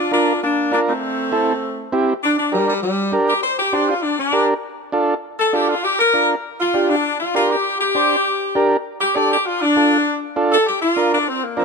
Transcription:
Already playing: saxophone section D4 F4
0.11 transistor combo organ D4 F4 A#4, saxophone section D4 F4
0.42 saxophone section A#3 D4
0.72 saxophone section A#3 D4, transistor combo organ D4 F4 A#4
0.87 saxophone section A3 C4
1.32 transistor combo organ C4 E4 A4
1.92 transistor combo organ C4 E4 G4
2.23 saxophone section D4
2.37 saxophone section D4
2.52 saxophone section G3, transistor combo organ D4 G4 A#4
2.68 saxophone section G3
2.83 saxophone section G3
3.12 transistor combo organ D4 G4 A#4
3.28 saxophone section G4
3.43 saxophone section C5
3.58 saxophone section G4
3.73 transistor combo organ D4 G4 C5, saxophone section D4
3.88 saxophone section F4
4.03 saxophone section D4
4.18 saxophone section D4
4.32 transistor combo organ D4 G4 A#4
4.92 transistor combo organ D4 F4 A4
5.39 saxophone section A4
5.53 transistor combo organ D4 F4 A4, saxophone section G4
5.68 saxophone section F4
5.84 saxophone section G4
5.99 saxophone section A#4
6.14 transistor combo organ D4 F4 A#4
6.59 saxophone section F4
6.74 transistor combo organ D4 F4 G4
6.90 saxophone section D4
7.20 saxophone section F4
7.35 transistor combo organ D4 G4 A#4, saxophone section F4
7.50 saxophone section G4
7.80 saxophone section G4
7.95 transistor combo organ D4 G4 C5
8.55 transistor combo organ D4 G4 A#4
9.01 saxophone section G4
9.15 transistor combo organ D4 G4 A4, saxophone section D5
9.31 saxophone section G4
9.46 saxophone section F4
9.61 saxophone section D4
9.76 transistor combo organ D4 F4 A4
10.36 transistor combo organ D4 F4 A4
10.52 saxophone section A4
10.67 saxophone section G4
10.82 saxophone section F4
10.96 transistor combo organ D4 F4 A#4
11.13 saxophone section D4
11.27 saxophone section C4
11.42 saxophone section A#3
11.57 saxophone section F3 C4, transistor combo organ D4 F4 A#4

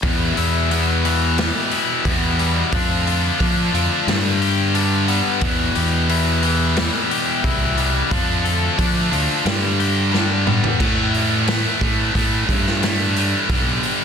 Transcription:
0.03 distorted electric guitar E2 B2 E3, clean electric guitar E2, fingered electric bass E2, kick, open hi-hat
0.37 fingered electric bass E2, clean electric guitar E4, open hi-hat
0.70 distorted electric guitar E2 B2 E3, clean electric guitar B3, open hi-hat
1.04 distorted electric guitar E2 B2 E3, clean electric guitar E3, open hi-hat
1.38 distorted electric guitar E2 B2 E3, clean electric guitar G3, snare, open hi-hat
1.71 clean electric guitar E4, open hi-hat
2.05 distorted electric guitar E2 B2 E3, fingered electric bass E2, clean electric guitar B3, kick, open hi-hat
2.39 distorted electric guitar E2 B2 E3, clean electric guitar G3, open hi-hat
2.72 fingered electric bass F2, distorted electric guitar D3 A3 D4, clean electric guitar F3, kick, open hi-hat
3.07 clean electric guitar F4, open hi-hat
3.40 distorted electric guitar D3 A3 D4, fingered electric bass F3, clean electric guitar D4, kick, open hi-hat
3.73 fingered electric bass F2, distorted electric guitar D3 A3 D4, clean electric guitar F3, open hi-hat
4.07 distorted electric guitar G2 D3 G3, fingered electric bass G2, clean electric guitar G2, snare, open hi-hat
4.42 clean electric guitar G4, open hi-hat
4.74 distorted electric guitar G2 D3 G3, clean electric guitar D4, open hi-hat
5.08 distorted electric guitar G2 D3 G3, clean electric guitar B3, open hi-hat
5.41 fingered electric bass E2, distorted electric guitar E2 B2 E3, clean electric guitar E2, kick, open hi-hat
5.75 fingered electric bass E2, clean electric guitar G4, open hi-hat
6.09 distorted electric guitar E2 B2 E3, clean electric guitar E4, open hi-hat
6.43 distorted electric guitar E2 B2 E3, clean electric guitar E3, open hi-hat
6.76 distorted electric guitar E2 B2 E3, clean electric guitar G3, snare, open hi-hat
7.11 clean electric guitar G4, open hi-hat
7.44 fingered electric bass C2, distorted electric guitar E2 B2 E3, clean electric guitar E4, kick, open hi-hat
7.77 distorted electric guitar E2 B2 E3, clean electric guitar G3, open hi-hat
8.11 fingered electric bass F2, distorted electric guitar D3 A3 D4, clean electric guitar F3, kick, open hi-hat
8.44 clean electric guitar A4, open hi-hat
8.77 distorted electric guitar D3 A3 D4, fingered electric bass F3, clean electric guitar D4, kick, open hi-hat
9.10 fingered electric bass D2, distorted electric guitar D3 A3 D4, clean electric guitar F3, open hi-hat
9.44 distorted electric guitar G2 D3 G3, fingered electric bass G2, clean electric guitar G2, snare, open hi-hat
9.79 clean electric guitar G4, open hi-hat
10.12 distorted electric guitar G2 D3 G3, clean electric guitar D4, snare
10.46 distorted electric guitar G2 D3 G3, clean electric guitar B3, mid tom
10.64 floor tom
10.79 distorted electric guitar A2 E3 A3, fingered electric bass A2, kick, crash
11.14 open hi-hat
11.47 distorted electric guitar A2 E3 A3, snare, open hi-hat
11.81 fingered electric bass A2, distorted electric guitar A2 E3 A3, kick, open hi-hat
12.15 distorted electric guitar A2 E3 A3, fingered electric bass A2, kick, open hi-hat
12.49 fingered electric bass G2, kick, open hi-hat
12.67 snare
12.82 distorted electric guitar A2 E3 A3, snare, open hi-hat
13.16 distorted electric guitar A2 E3 A3, open hi-hat
13.49 fingered electric bass B1, distorted electric guitar G2 D3 G3, kick, open hi-hat
13.83 open hi-hat

